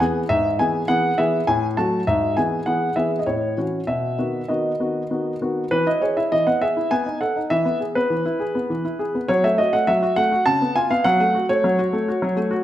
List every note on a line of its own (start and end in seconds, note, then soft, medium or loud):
0.00 0.22 E3 soft
0.00 0.22 B3 soft
0.00 0.22 G#4 soft
0.00 0.18 G#5 medium
0.29 0.59 G#2 medium
0.29 0.47 E5 medium
0.59 0.81 E3 soft
0.59 0.81 B3 soft
0.59 0.81 G#4 soft
0.59 0.86 G#5 medium
0.88 1.10 E3 soft
0.88 1.10 B3 soft
0.88 1.11 G#4 soft
0.88 1.18 F#5 medium
1.18 1.40 E3 soft
1.18 1.40 B3 soft
1.18 1.40 G#4 soft
1.18 1.36 E5 medium
1.47 1.77 A2 medium
1.47 1.65 G#5 medium
1.77 1.99 F#3 soft
1.77 1.99 A3 soft
1.77 1.99 F#4 soft
1.77 2.04 A5 medium
2.07 2.36 G#2 medium
2.07 2.34 E5 medium
2.37 2.58 E3 soft
2.37 2.59 B3 soft
2.37 2.59 G#4 soft
2.37 2.63 G#5 medium
2.66 2.88 E3 soft
2.66 2.88 B3 soft
2.66 2.89 G#4 soft
2.66 2.96 F#5 medium
2.96 3.18 E3 soft
2.96 3.18 B3 soft
2.96 3.19 G#4 soft
2.96 3.10 E5 medium
3.19 3.26 D#5 soft
3.26 3.56 A2 soft
3.26 3.63 C#5 medium
3.57 3.79 E3 soft
3.57 3.79 C#4 soft
3.57 3.80 F#4 soft
3.87 4.17 B2 soft
3.87 4.49 E5 medium
4.18 4.40 D#3 soft
4.18 4.40 B3 soft
4.18 4.41 F#4 soft
4.48 4.71 D#3 soft
4.48 4.71 B3 soft
4.48 4.71 F#4 soft
4.48 5.36 D#5 soft
4.80 5.01 D#3 soft
4.80 5.02 B3 soft
4.80 5.02 F#4 soft
5.10 5.32 D#3 soft
5.10 5.32 B3 soft
5.10 5.33 F#4 soft
5.41 5.63 D#3 soft
5.41 5.63 B3 soft
5.41 5.63 F#4 soft
5.71 5.86 E3 medium
5.71 5.86 B4 medium
5.87 6.02 E4 soft
5.87 6.02 D#5 medium
6.02 6.17 G#4 soft
6.02 6.16 C#5 medium
6.17 6.32 E4 soft
6.17 6.31 E5 medium
6.32 6.46 E3 soft
6.32 6.46 D#5 medium
6.47 6.62 B3 soft
6.47 6.61 F#5 medium
6.62 6.77 G#4 soft
6.62 6.91 E5 medium
6.77 6.91 E4 soft
6.91 7.06 B3 soft
6.91 7.18 G#5 medium
7.06 7.22 D#4 soft
7.21 7.37 A4 soft
7.21 7.39 F#5 medium
7.36 7.51 D#4 soft
7.50 7.65 E3 medium
7.50 7.77 E5 medium
7.65 7.81 B3 soft
7.80 7.96 G#4 soft
7.95 8.11 B3 soft
7.95 9.29 B4 medium
8.10 8.25 E3 soft
8.25 8.41 E4 soft
8.40 8.55 G#4 soft
8.55 8.70 B3 soft
8.70 8.84 E3 soft
8.85 9.00 E4 soft
8.99 9.15 G#4 soft
9.15 9.29 B3 soft
9.28 9.43 F#3 medium
9.28 9.44 C#5 medium
9.44 9.59 A3 soft
9.44 9.59 E5 medium
9.58 9.74 F#4 soft
9.58 9.73 D#5 medium
9.73 9.89 A3 soft
9.73 9.88 F#5 medium
9.87 10.02 F#3 soft
9.87 10.14 E5 medium
10.03 10.18 F#4 soft
10.16 10.32 A3 medium
10.16 10.43 F#5 medium
10.32 10.46 F#4 soft
10.46 10.61 C#3 medium
10.46 10.72 A5 medium
10.62 10.77 B3 soft
10.76 10.91 F4 medium
10.76 10.90 G#5 medium
10.91 11.05 B3 soft
10.91 11.05 F5 medium
11.04 11.19 F#3 medium
11.04 11.45 F#5 medium
11.20 11.35 A3 soft
11.35 11.50 F#4 soft
11.49 11.65 A3 soft
11.49 12.64 C#5 medium
11.64 11.78 F#3 medium
11.79 11.94 F#4 soft
11.93 12.08 A3 medium
12.08 12.23 F#4 soft
12.22 12.36 F#3 medium
12.37 12.52 A3 soft
12.51 12.64 F#4 medium